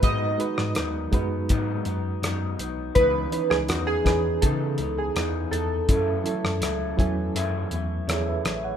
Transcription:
<<
  \new Staff \with { instrumentName = "Synth keys" } { \time 4/4 \key cis \minor \tempo 4 = 82 dis''4 r2. | b'8. gis'16 fis'16 gis'8. a'8. gis'8. a'8~ | a'2~ a'8 r4. | }
  \new Staff \with { instrumentName = "Reed electric piano" } { \time 4/4 \key cis \minor << { r1 | r1 | r2. <gis' cis''>16 <b' e''>8 <cis'' fis''>16 | } \\ { <gis dis' fis' b'>8 <gis dis' fis' b'>4 <gis dis' fis' b'>2 r8 | <e cis' dis' b'>8 <e cis' dis' b'>4 <e cis' dis' b'>2 r8 | <fis cis' e' a'>8 <fis cis' e' a'>4 <fis cis' e' gis''>2 r8 | } >> }
  \new Staff \with { instrumentName = "Clean electric guitar" } { \time 4/4 \key cis \minor <gis, dis fis b dis'>8 <fis b dis'>8 <dis fis b dis'>8 <fis b dis'>8 <gis, dis fis b dis'>8 <fis b dis'>8 <dis fis b dis'>8 <fis b dis'>8 | <cis e b dis'>8 <e b dis'>8 <cis e b dis'>8 <e b dis'>8 <cis e b dis'>8 <e b dis'>8 <cis e b dis'>8 <e b dis'>8 | <fis, cis e a e'>8 <e a e'>8 <cis e a e'>8 <e a e'>8 <fis, cis e a e'>8 <e a e'>8 <cis e a e'>8 <e a e'>8 | }
  \new Staff \with { instrumentName = "Tine electric piano" } { \clef bass \time 4/4 \key cis \minor gis,8 r16 gis,16 dis,8 fis,8 gis,8 fis,8 fis,8 b,,8 | cis,8 r16 cis,16 e,8 e,8 cis8 cis,8 e,8 e,8 | fis,8 r16 fis,16 cis,8 e,8 fis,8 e,8 e,8 a,,8 | }
  \new DrumStaff \with { instrumentName = "Drums" } \drummode { \time 4/4 <hh bd>8 hh16 ss16 <hh ss>8 <hh bd>8 <hh bd>8 hh8 <hh ss>8 hh8 | <hh bd>8 hh16 ss16 <hh ss>8 <hh bd ss>8 <hh bd>8 hh8 <hh ss>8 hh8 | <hh bd>8 hh16 ss16 <hh ss>8 <hh bd>8 hh8 hh8 <hh ss>8 <hh ss>8 | }
>>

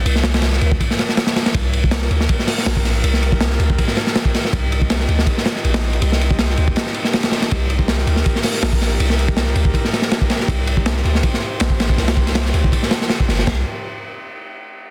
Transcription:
<<
  \new Staff \with { instrumentName = "Analog synth pad" } { \time 4/4 \key c \minor \tempo 4 = 161 << { r1 | bes'1~ | bes'1 | ees''1~ |
ees''1 | bes'1~ | bes'1 | c''1~ |
c''1 | <c' ees' g' bes'>8 r2. r8 | } \\ { r1 | <c' ees' g'>1~ | <c' ees' g'>1~ | <c' ees' g'>1~ |
<c' ees' g'>1~ | <c' ees' g'>1~ | <c' ees' g'>1~ | <c' ees' g'>1~ |
<c' ees' g'>1 | r1 | } >> }
  \new Staff \with { instrumentName = "808-style bass" } { \clef bass \time 4/4 \key c \minor c,4. d,8 r2 | c,4. d,8 r4 bes,,4 | c,4. d,8 r2 | c,4. d,8 r4 bes,,4 |
c,4. d,8 r2 | c,4. d,8 r4 bes,,4 | c,4. d,8 r2 | c,4. d,8 r4 bes,,4 |
c,4. d,8 r4. g,,8 | c,8 r2. r8 | }
  \new DrumStaff \with { instrumentName = "Drums" } \drummode { \time 4/4 cymr16 sn16 <cymr sn>16 <cymr sn>16 <cymr sn>16 sn16 cymr16 bd16 <bd cymr>16 sn16 <cymr sn>16 sn16 <cymr sn>16 <cymr sn>16 <cymr sn>16 <cymr sn>16 | <bd cymr>8 cymr16 bd16 <cymr sn>16 sn16 cymr16 sn16 <bd cymr>16 sn16 <hho sn>16 sn16 <cymr sn>16 bd16 <cymr sn>8 | cymr16 sn16 cymr16 bd16 <cymr sn>16 sn16 cymr16 bd16 <bd cymr>16 sn16 <cymr sn>16 sn16 <cymr sn>16 bd16 <cymr sn>16 sn16 | <bd cymr>8 cymr16 bd16 <cymr sn>16 sn16 cymr16 sn16 <bd cymr>16 sn16 <cymr sn>16 sn16 cymr16 <cymr sn>16 sn16 cymr16 |
cymr16 sn16 cymr16 bd16 <cymr sn>16 sn16 cymr16 bd16 <cymr sn>16 sn16 cymr16 sn16 <cymr sn>16 <cymr sn>16 <cymr sn>16 <cymr sn>16 | <bd cymr>8 cymr16 bd16 <cymr sn>16 sn16 cymr16 sn16 <bd cymr>16 sn16 <hho sn>16 sn16 <cymr sn>16 bd16 <cymr sn>8 | cymr16 sn16 cymr16 bd16 <cymr sn>16 sn16 cymr16 bd16 <bd cymr>16 sn16 <cymr sn>16 sn16 <cymr sn>16 bd16 <cymr sn>16 sn16 | <bd cymr>8 cymr16 bd16 <cymr sn>16 sn16 cymr16 sn16 <bd cymr>16 sn8. <cymr sn>16 bd16 <cymr sn>16 bd16 |
<cymr sn>16 <cymr sn>16 bd16 <cymr sn>16 <cymr sn>16 sn16 cymr16 bd16 <bd cymr>16 sn16 <cymr sn>16 sn16 <cymr sn>16 bd16 <cymr sn>16 sn16 | <cymc bd sn>4 r4 r4 r4 | }
>>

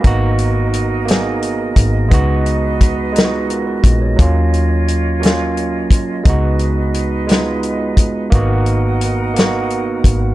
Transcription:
<<
  \new Staff \with { instrumentName = "Flute section" } { \time 6/8 \key des \mixolydian \tempo 4. = 58 << { ees''2.~ | ees''2.~ | ees''2.~ | ees''2. |
ges''2. | } \\ { <ees' bes'>2. | <ees' ces''>2. | <f' des''>2. | <ees' ces''>2. |
<ees' bes'>2. | } >> }
  \new Staff \with { instrumentName = "Tine electric piano" } { \time 6/8 \key des \mixolydian << { r2. | r2 <f' bes'>16 <ges' ces''>8 <aes' des''>16~ | <aes' des''>16 r2 r8. | r2. |
r2. | } \\ { <bes ces' ees' ges'>4 r8 <bes ces' ees' aes'>4 r8 | <aes ces' ees' ges'>4 r8 <aes ces' ees' f' ges'>4 r8 | <ges bes des' f'>4 r8 <ges bes des' f'>4 r8 | <aes ces' ees' ges'>4 r8 <aes ces' ees' f'>4 r8 |
<bes ces' ees' ges'>4 r8 <bes ces' ees' ges'>4 r8 | } >> }
  \new Staff \with { instrumentName = "Fingered electric bass" } { \clef bass \time 6/8 \key des \mixolydian aes,,2~ aes,,8 aes,,8 | des,2~ des,8 bes,,8 | ees,2~ ees,8 aes,,8 | des,2~ des,8 ees,8 |
aes,,2~ aes,,8 aes,,8 | }
  \new DrumStaff \with { instrumentName = "Drums" } \drummode { \time 6/8 <hh bd>8 hh8 hh8 <hh sn>8 hh8 <hh bd>8 | <hh bd>8 hh8 <hh bd>8 <hh sn>8 hh8 <hh bd>8 | <hh bd>8 hh8 hh8 <hh sn>8 hh8 <hh bd>8 | <hh bd>8 hh8 hh8 <hh sn>8 hh8 <hh bd>8 |
<hh bd>8 hh8 hh8 <hh sn>8 hh8 <hh bd>8 | }
>>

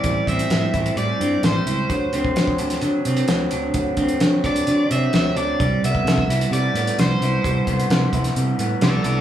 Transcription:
<<
  \new Staff \with { instrumentName = "Overdriven electric guitar" } { \time 4/4 \key d \mixolydian \tempo 4 = 130 d''8 e''4. d''4 c''4~ | c''2 r2 | r4. d''4 e''8 e''8 d''8~ | d''8 e''4. d''4 c''4~ |
c''2 r4 <a' d''>8 <a' d''>8 | }
  \new Staff \with { instrumentName = "Clean electric guitar" } { \time 4/4 \key d \mixolydian <g c' e'>8 c'8 g8 e'8 g8 c'8 g8 e'8 | fis8 c'8 fis8 d'8 fis8 c'8 fis8 d'8 | fis8 c'8 fis8 d'8 fis8 c'8 fis8 d'8 | g8 b8 g8 e'8 g8 b8 g8 e'8 |
g8 b8 g8 e'8 g8 b8 g8 e'8 | }
  \new Staff \with { instrumentName = "Fingered electric bass" } { \clef bass \time 4/4 \key d \mixolydian a,,8 a,,8 a,8 a,,8 a,8 g,8 a,,8 cis,8 | d,8 d,8 d8 d,8 d8 c8 d,8 d,8 | d,8 d,8 d8 d,8 d8 c8 d,8 d,8 | c,8 c,8 c8 c,8 c8 a,8 c,8 c,8 |
c,8 c,8 c8 c,8 c8 a,8 c,8 c,8 | }
  \new DrumStaff \with { instrumentName = "Drums" } \drummode { \time 4/4 <hh bd>8 <hh bd>16 hh16 <hh sn>8 <hh bd>16 hh16 hh8 hh8 <hh sn>8 hh8 | <hh bd>8 hh16 bd16 <hh sn>16 bd16 hh16 <hh sn>16 hh8 hh16 hh16 <hh sn>8 hh8 | <hh bd>8 <hh bd>16 hh16 <hh sn>8 <hh bd>16 hh16 hh8 hh8 <hh sn>8 hh8 | <hh bd>8 hh16 bd16 <hh sn>16 bd16 hh16 hh16 hh8 hh16 hh16 <hh sn>8 hh8 |
<hh bd>8 <hh bd>16 hh16 <hh sn>8 <hh bd>16 <hh sn>16 hh8 hh8 <hh sn>8 hh8 | }
>>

